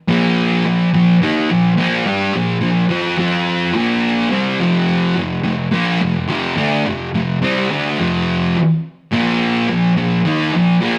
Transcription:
0.08 distorted electric guitar A#2 F3 A#3
0.65 distorted electric guitar A#2 F3
0.94 distorted electric guitar A#2 F3
1.22 distorted electric guitar D#3 A#3 D#4
1.50 distorted electric guitar A#2 F3
1.77 distorted electric guitar A#2 F3 A#3
2.06 distorted electric guitar G3 D4 G4
2.34 distorted electric guitar A#2 F3
2.61 distorted electric guitar A#2 F3
2.89 distorted electric guitar F3 C4 F4
3.17 distorted electric guitar F3 C4 F4
3.74 distorted electric guitar A#2 F3 A#3
4.30 distorted electric guitar C3 G3 C4
4.59 distorted electric guitar F2 C3 F3
5.16 distorted electric guitar F2 C3
5.44 distorted electric guitar F2 C3
5.71 distorted electric guitar A#2 F3 A#3
6.01 distorted electric guitar F2 C3
6.28 distorted electric guitar F2 C3 F3
6.56 distorted electric guitar D3 A3 D4
6.85 distorted electric guitar F2 C3
7.15 distorted electric guitar F2 C3
7.42 distorted electric guitar C3 G3 C4
7.70 distorted electric guitar D3 A3 D4
7.99 distorted electric guitar F2 C3 F3
8.57 muted distorted electric guitar stroke
9.12 distorted electric guitar A#2 F3 A#3
9.69 distorted electric guitar A#2 F3
9.97 distorted electric guitar A#2 F3
10.26 distorted electric guitar D#3 A#3 D#4
10.54 distorted electric guitar A#2 F3
10.81 distorted electric guitar A#2 F3 A#3

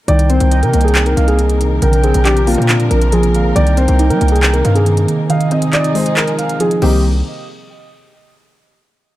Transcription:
0.08 808-style bass C2, string section C3 A#3 D#4 A#4, synth keys D#3, grand piano D5, soft synth lead G5, closed hi-hat
0.19 closed hi-hat
0.30 synth keys C4, grand piano C5, closed hi-hat
0.40 808-style bass C2, closed hi-hat
0.52 synth keys D#4, closed hi-hat
0.63 808-style bass C3, grand piano A#4, closed hi-hat
0.73 808-style bass C2, synth keys A#3, closed hi-hat
0.81 grand piano G#4, closed hi-hat
0.88 closed hi-hat
0.95 clap, closed hi-hat
1.06 grand piano A#4, closed hi-hat
1.17 808-style bass C2, soft synth lead F5, closed hi-hat
1.28 grand piano G#4, closed hi-hat
1.39 synth keys D#3, closed hi-hat
1.50 closed hi-hat
1.60 synth keys D#3, closed hi-hat
1.82 808-style bass A#1, synth keys D3, string section F3 D4, grand piano A#4, soft synth lead G5, closed hi-hat
1.93 closed hi-hat
2.04 synth keys C4, grand piano G#4, closed hi-hat
2.14 808-style bass A#1, closed hi-hat
2.25 synth keys D4, grand piano G4, clap, closed hi-hat
2.37 closed hi-hat
2.47 synth keys A#3, grand piano F4, closed hi-hat, open hi-hat
2.55 808-style bass A#2, closed hi-hat
2.62 closed hi-hat
2.69 clap, closed hi-hat
2.80 closed hi-hat
2.90 808-style bass A#1, grand piano A#4, closed hi-hat
3.02 closed hi-hat
3.12 synth keys F3, grand piano G#4, closed hi-hat
3.23 closed hi-hat
3.34 synth keys D3, soft synth lead F5, closed hi-hat
3.56 808-style bass C2, synth keys D#3, string section A#3 D#4, grand piano D5, soft synth lead G5, closed hi-hat
3.67 closed hi-hat
3.77 synth keys C4, grand piano C5, closed hi-hat
3.88 808-style bass C2, closed hi-hat
3.99 synth keys D#4, closed hi-hat
4.10 808-style bass G3, grand piano A#4, closed hi-hat
4.21 808-style bass C2, synth keys A#3, closed hi-hat
4.28 grand piano G#4, closed hi-hat
4.36 closed hi-hat
4.43 clap, closed hi-hat
4.53 grand piano A#4, closed hi-hat
4.65 808-style bass G2, soft synth lead F5, closed hi-hat
4.75 grand piano G#4, closed hi-hat
4.86 synth keys D#3, closed hi-hat
4.97 closed hi-hat
5.08 synth keys D#3, closed hi-hat
5.29 synth keys D#3, string section F3 D#4 G#4, soft synth lead D#5, grand piano F5, closed hi-hat
5.41 closed hi-hat
5.51 synth keys C4, grand piano D#5, closed hi-hat
5.62 closed hi-hat
5.73 synth keys D#4, grand piano D5, clap, closed hi-hat
5.84 closed hi-hat
5.95 synth keys G#3, grand piano C5, closed hi-hat, open hi-hat
6.06 closed hi-hat
6.17 grand piano A#4, clap, closed hi-hat
6.28 closed hi-hat
6.39 soft synth lead F5, closed hi-hat
6.49 closed hi-hat
6.60 synth keys F3, grand piano G#4, closed hi-hat
6.71 closed hi-hat
6.82 808-style bass C2, string section C3 A#3 D#4 G4, synth keys D#3 G3 A#3 C4, grand piano G4, soft synth lead D#5, crash

